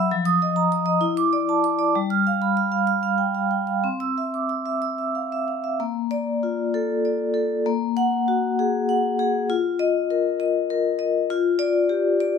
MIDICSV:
0, 0, Header, 1, 2, 480
1, 0, Start_track
1, 0, Key_signature, 0, "major"
1, 0, Tempo, 616650
1, 92, Time_signature, 6, 3, 24, 8
1, 2493, Tempo, 650054
1, 4413, Key_signature, -2, "major"
1, 4413, Tempo, 622407
1, 5373, Tempo, 604839
1, 9606, End_track
2, 0, Start_track
2, 0, Title_t, "Vibraphone"
2, 0, Program_c, 0, 11
2, 0, Control_c, 0, 64, 127
2, 0, Note_on_c, 0, 54, 96
2, 0, Note_on_c, 0, 76, 71
2, 0, Note_on_c, 0, 83, 78
2, 0, Note_on_c, 0, 88, 80
2, 89, Note_on_c, 0, 53, 95
2, 91, Note_off_c, 0, 76, 0
2, 108, Note_off_c, 0, 83, 0
2, 108, Control_c, 0, 64, 0
2, 110, Note_off_c, 0, 54, 0
2, 111, Note_off_c, 0, 88, 0
2, 198, Note_on_c, 0, 87, 101
2, 244, Control_c, 0, 64, 127
2, 329, Note_on_c, 0, 75, 78
2, 396, Note_off_c, 0, 87, 0
2, 437, Note_on_c, 0, 82, 72
2, 521, Note_off_c, 0, 75, 0
2, 561, Note_on_c, 0, 87, 75
2, 634, Note_off_c, 0, 82, 0
2, 668, Note_on_c, 0, 75, 77
2, 754, Note_off_c, 0, 87, 0
2, 783, Note_off_c, 0, 53, 0
2, 784, Note_on_c, 0, 64, 98
2, 796, Note_off_c, 0, 75, 0
2, 821, Control_c, 0, 64, 0
2, 912, Note_on_c, 0, 86, 100
2, 930, Control_c, 0, 64, 127
2, 1033, Note_on_c, 0, 74, 73
2, 1109, Note_off_c, 0, 86, 0
2, 1159, Note_on_c, 0, 81, 70
2, 1230, Note_off_c, 0, 74, 0
2, 1277, Note_on_c, 0, 86, 81
2, 1354, Note_off_c, 0, 81, 0
2, 1391, Note_on_c, 0, 74, 69
2, 1473, Note_off_c, 0, 86, 0
2, 1491, Note_off_c, 0, 64, 0
2, 1517, Note_off_c, 0, 74, 0
2, 1520, Note_on_c, 0, 55, 95
2, 1540, Control_c, 0, 64, 0
2, 1637, Note_on_c, 0, 89, 90
2, 1682, Control_c, 0, 64, 127
2, 1766, Note_on_c, 0, 77, 72
2, 1832, Note_off_c, 0, 89, 0
2, 1881, Note_on_c, 0, 83, 69
2, 1957, Note_off_c, 0, 77, 0
2, 2001, Note_on_c, 0, 89, 65
2, 2075, Note_off_c, 0, 83, 0
2, 2116, Note_on_c, 0, 77, 67
2, 2196, Note_off_c, 0, 89, 0
2, 2236, Note_on_c, 0, 89, 72
2, 2315, Note_off_c, 0, 77, 0
2, 2358, Note_on_c, 0, 77, 61
2, 2438, Note_off_c, 0, 89, 0
2, 2475, Note_on_c, 0, 79, 56
2, 2558, Note_off_c, 0, 77, 0
2, 2599, Note_on_c, 0, 77, 56
2, 2602, Note_off_c, 0, 79, 0
2, 2719, Note_on_c, 0, 79, 53
2, 2796, Note_off_c, 0, 77, 0
2, 2839, Note_on_c, 0, 77, 57
2, 2844, Note_off_c, 0, 79, 0
2, 2938, Note_off_c, 0, 55, 0
2, 2961, Note_on_c, 0, 60, 72
2, 2964, Note_off_c, 0, 77, 0
2, 2984, Control_c, 0, 64, 0
2, 3084, Note_on_c, 0, 88, 74
2, 3132, Control_c, 0, 64, 127
2, 3212, Note_on_c, 0, 76, 58
2, 3280, Note_off_c, 0, 88, 0
2, 3333, Note_on_c, 0, 86, 54
2, 3404, Note_off_c, 0, 76, 0
2, 3446, Note_on_c, 0, 88, 57
2, 3525, Note_off_c, 0, 86, 0
2, 3566, Note_on_c, 0, 76, 60
2, 3641, Note_off_c, 0, 88, 0
2, 3686, Note_on_c, 0, 88, 64
2, 3761, Note_off_c, 0, 76, 0
2, 3808, Note_on_c, 0, 76, 52
2, 3881, Note_off_c, 0, 88, 0
2, 3932, Note_on_c, 0, 77, 45
2, 4004, Note_off_c, 0, 76, 0
2, 4054, Note_off_c, 0, 77, 0
2, 4059, Note_on_c, 0, 76, 57
2, 4174, Note_on_c, 0, 77, 50
2, 4251, Note_off_c, 0, 76, 0
2, 4291, Note_on_c, 0, 76, 52
2, 4295, Note_off_c, 0, 77, 0
2, 4379, Note_off_c, 0, 60, 0
2, 4410, Note_on_c, 0, 58, 90
2, 4411, Note_off_c, 0, 76, 0
2, 4426, Control_c, 0, 64, 0
2, 4557, Control_c, 0, 64, 127
2, 4648, Note_on_c, 0, 74, 93
2, 4898, Note_on_c, 0, 65, 66
2, 5035, Note_off_c, 0, 74, 0
2, 5137, Note_on_c, 0, 69, 78
2, 5280, Note_off_c, 0, 65, 0
2, 5375, Note_on_c, 0, 74, 71
2, 5522, Note_off_c, 0, 69, 0
2, 5605, Note_on_c, 0, 69, 69
2, 5763, Note_off_c, 0, 74, 0
2, 5826, Note_off_c, 0, 58, 0
2, 5853, Note_off_c, 0, 69, 0
2, 5859, Note_on_c, 0, 58, 97
2, 5874, Control_c, 0, 64, 0
2, 5989, Control_c, 0, 64, 127
2, 6102, Note_on_c, 0, 78, 92
2, 6351, Note_on_c, 0, 66, 66
2, 6493, Note_off_c, 0, 78, 0
2, 6598, Note_on_c, 0, 68, 77
2, 6735, Note_off_c, 0, 66, 0
2, 6835, Note_on_c, 0, 78, 73
2, 6976, Note_off_c, 0, 68, 0
2, 7075, Note_on_c, 0, 68, 80
2, 7213, Note_off_c, 0, 78, 0
2, 7273, Note_off_c, 0, 58, 0
2, 7309, Note_off_c, 0, 68, 0
2, 7316, Note_on_c, 0, 65, 102
2, 7319, Control_c, 0, 64, 0
2, 7433, Control_c, 0, 64, 127
2, 7552, Note_on_c, 0, 75, 105
2, 7799, Note_on_c, 0, 70, 71
2, 7931, Note_off_c, 0, 75, 0
2, 8032, Note_on_c, 0, 75, 82
2, 8173, Note_off_c, 0, 70, 0
2, 8273, Note_on_c, 0, 70, 76
2, 8408, Note_off_c, 0, 75, 0
2, 8500, Note_on_c, 0, 75, 88
2, 8648, Note_off_c, 0, 70, 0
2, 8711, Note_off_c, 0, 65, 0
2, 8738, Note_off_c, 0, 75, 0
2, 8749, Control_c, 0, 64, 0
2, 8749, Note_on_c, 0, 65, 108
2, 8898, Control_c, 0, 64, 127
2, 8977, Note_on_c, 0, 74, 112
2, 9219, Note_on_c, 0, 67, 77
2, 9359, Note_off_c, 0, 74, 0
2, 9466, Note_on_c, 0, 74, 90
2, 9600, Note_off_c, 0, 67, 0
2, 9606, Note_off_c, 0, 65, 0
2, 9606, Note_off_c, 0, 74, 0
2, 9606, End_track
0, 0, End_of_file